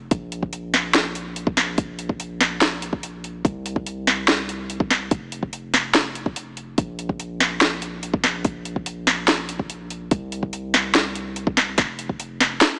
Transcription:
0.11 808-style bass A#1, kick, closed hi-hat
0.32 closed hi-hat
0.43 kick
0.53 closed hi-hat
0.74 snare, closed hi-hat
0.94 snare, closed hi-hat
1.15 closed hi-hat
1.36 closed hi-hat
1.47 kick
1.57 808-style bass A#1, snare, closed hi-hat
1.78 kick, closed hi-hat
1.99 closed hi-hat
2.09 kick
2.20 closed hi-hat
2.41 snare, closed hi-hat
2.61 snare, closed hi-hat
2.82 closed hi-hat
2.93 kick
3.03 closed hi-hat
3.24 closed hi-hat
3.45 808-style bass C2, kick, closed hi-hat
3.66 closed hi-hat
3.76 kick
3.86 closed hi-hat
4.07 snare, closed hi-hat
4.28 snare, closed hi-hat
4.49 closed hi-hat
4.70 closed hi-hat
4.80 kick
4.90 snare, closed hi-hat
5.11 808-style bass F1, kick, closed hi-hat
5.32 closed hi-hat
5.43 kick
5.53 closed hi-hat
5.74 snare, closed hi-hat
5.95 snare, closed hi-hat
6.15 closed hi-hat
6.26 kick
6.36 closed hi-hat
6.57 closed hi-hat
6.78 808-style bass A#1, kick, closed hi-hat
6.99 closed hi-hat
7.09 kick
7.20 closed hi-hat
7.40 snare, closed hi-hat
7.61 snare, closed hi-hat
7.82 closed hi-hat
8.03 closed hi-hat
8.14 kick
8.24 808-style bass A#1, snare, closed hi-hat
8.44 kick, closed hi-hat
8.65 closed hi-hat
8.76 kick
8.86 closed hi-hat
9.07 snare, closed hi-hat
9.28 snare, closed hi-hat
9.49 closed hi-hat
9.59 kick
9.70 closed hi-hat
9.90 closed hi-hat
10.11 808-style bass C2, kick, closed hi-hat
10.32 closed hi-hat
10.43 kick
10.53 closed hi-hat
10.74 snare, closed hi-hat
10.95 snare, closed hi-hat
11.15 closed hi-hat
11.36 closed hi-hat
11.47 kick
11.57 snare, closed hi-hat
11.78 808-style bass F1, kick, snare, closed hi-hat
11.99 closed hi-hat
12.09 kick
12.20 closed hi-hat
12.40 snare, closed hi-hat
12.61 snare, closed hi-hat

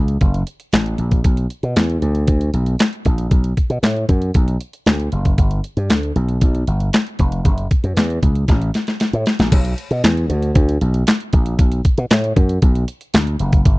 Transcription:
Already playing: slap bass C#2
0.08 closed hi-hat
0.21 slap bass F#1, kick, closed hi-hat
0.34 closed hi-hat
0.47 closed hi-hat
0.60 closed hi-hat
0.73 slap bass A1, snare, clap, closed hi-hat
0.86 closed hi-hat
0.98 slap bass A#1, closed hi-hat
1.11 kick, closed hi-hat
1.24 slap bass B1, kick, closed hi-hat
1.37 closed hi-hat
1.50 closed hi-hat
1.63 slap bass B2, closed hi-hat
1.76 slap bass E2, snare, clap, closed hi-hat
1.90 closed hi-hat
2.02 slap bass D2, closed hi-hat
2.15 closed hi-hat
2.27 slap bass D2, kick, closed hi-hat
2.41 closed hi-hat
2.54 slap bass B1, closed hi-hat
2.66 closed hi-hat
2.79 snare, clap, closed hi-hat
2.93 closed hi-hat
3.05 slap bass A#1, kick, closed hi-hat
3.18 closed hi-hat
3.31 slap bass B1, kick, closed hi-hat
3.44 closed hi-hat
3.57 kick, closed hi-hat
3.70 slap bass B2, closed hi-hat
3.83 slap bass A2, snare, clap, closed hi-hat
3.96 closed hi-hat
4.09 slap bass F#2, kick, closed hi-hat
4.22 closed hi-hat
4.34 slap bass B1, kick, closed hi-hat
4.48 closed hi-hat
4.61 closed hi-hat
4.73 closed hi-hat
4.86 slap bass D2, snare, clap, closed hi-hat
5.00 closed hi-hat
5.12 slap bass F#1, closed hi-hat
5.25 kick, closed hi-hat
5.38 slap bass G1, kick, closed hi-hat
5.51 closed hi-hat
5.64 closed hi-hat
5.77 slap bass G2, closed hi-hat
5.90 slap bass D2, snare, clap, closed hi-hat
6.03 closed hi-hat
6.16 slap bass B1, closed hi-hat
6.29 closed hi-hat
6.41 slap bass B1, kick, closed hi-hat
6.55 closed hi-hat
6.67 slap bass G1, closed hi-hat
6.80 closed hi-hat
6.93 snare, clap, closed hi-hat
7.07 closed hi-hat
7.19 slap bass F1, kick, closed hi-hat
7.32 closed hi-hat
7.45 slap bass F#1, kick, closed hi-hat
7.58 closed hi-hat
7.71 kick, closed hi-hat
7.84 slap bass F#2, closed hi-hat
7.97 slap bass E2, snare, clap, closed hi-hat
8.10 closed hi-hat
8.23 slap bass C#2, kick, closed hi-hat
8.35 closed hi-hat
8.48 slap bass A1, kick, snare, closed hi-hat
8.62 closed hi-hat
8.74 snare, closed hi-hat
8.87 snare, closed hi-hat
9.00 snare, closed hi-hat
9.13 slap bass A2, closed hi-hat
9.26 snare, closed hi-hat
9.39 slap bass A#1, snare, closed hi-hat
9.52 slap bass B1, kick, closed hi-hat, crash
9.65 closed hi-hat
9.78 closed hi-hat
9.91 slap bass B2, closed hi-hat
10.04 slap bass E2, snare, clap, closed hi-hat
10.17 closed hi-hat
10.30 slap bass D2, closed hi-hat
10.42 closed hi-hat
10.55 slap bass D2, kick, closed hi-hat
10.69 closed hi-hat
10.81 slap bass B1, closed hi-hat
10.94 closed hi-hat
11.07 snare, clap, closed hi-hat
11.20 closed hi-hat
11.33 slap bass A#1, kick, closed hi-hat
11.46 closed hi-hat
11.59 slap bass B1, kick, closed hi-hat
11.72 closed hi-hat
11.85 kick, closed hi-hat
11.98 slap bass B2, closed hi-hat
12.11 slap bass A2, snare, clap, closed hi-hat
12.24 closed hi-hat
12.36 slap bass F#2, kick, closed hi-hat
12.49 closed hi-hat
12.62 slap bass B1, kick, closed hi-hat
12.75 closed hi-hat
12.88 closed hi-hat
13.01 closed hi-hat
13.14 slap bass D2, snare, clap, closed hi-hat
13.27 closed hi-hat
13.39 slap bass F#1, closed hi-hat
13.53 kick, closed hi-hat
13.65 slap bass G1, kick, closed hi-hat

